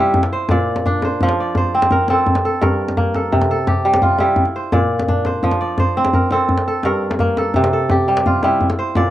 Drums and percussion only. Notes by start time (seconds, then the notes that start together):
0.14 djembe bass
0.23 djembe slap, djembe tone
0.49 djembe tone, djembe bass
0.76 djembe slap, djembe tone
0.86 djembe slap, djembe bass
1.02 djembe tone
1.21 djembe bass
1.29 djembe slap, djembe tone
1.55 djembe tone, djembe bass
1.82 djembe slap, djembe tone
1.91 djembe bass
2.08 djembe slap, djembe tone
2.27 djembe bass
2.35 djembe slap, djembe tone
2.62 djembe tone, djembe bass
2.88 djembe slap, djembe tone
2.97 djembe slap, djembe bass
3.14 djembe tone
3.33 djembe bass
3.41 djembe slap, djembe tone
3.59 djembe slap
3.67 djembe tone, djembe bass
3.94 djembe slap, djembe tone
4.02 djembe slap, djembe bass
4.19 djembe tone
4.36 djembe bass
4.45 djembe tone
4.63 djembe slap
4.72 djembe tone, djembe bass
4.99 djembe slap, djembe tone
5.08 djembe slap, djembe bass
5.17 djembe slap
5.25 djembe tone
5.43 djembe bass
5.51 djembe slap, djembe tone
5.78 djembe tone, djembe bass
6.05 djembe slap, djembe tone
6.13 djembe bass
6.31 djembe slap, djembe tone
6.49 djembe bass
6.57 djembe slap
6.83 djembe tone
7.11 djembe slap, djembe tone
7.19 djembe slap, djembe bass
7.37 djembe tone
7.54 djembe bass
7.64 djembe slap, djembe tone
7.89 djembe tone, djembe bass
8.17 djembe slap
8.26 djembe bass
8.43 djembe slap, djembe tone
8.61 djembe bass
8.70 djembe slap, djembe tone
8.95 djembe tone, djembe bass